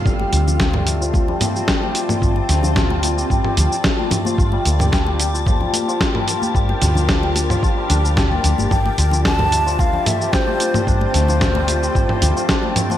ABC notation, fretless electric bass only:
X:1
M:4/4
L:1/16
Q:1/4=111
K:Fmix
V:1 name="Fretless electric bass" clef=bass
G,,, z D,,6- D,, z6 z | G,,, z D,,4- D,, z G,,, z D,, z4 z | G,,, z D,,6- D,, z6 z | G,,, z D,,4- D,, z3 D,,3 z D,, G,,, |
G,,, z D,,6- D,, z6 z | G,,, z D,,4- D,, z G,,, z D,, z4 z |]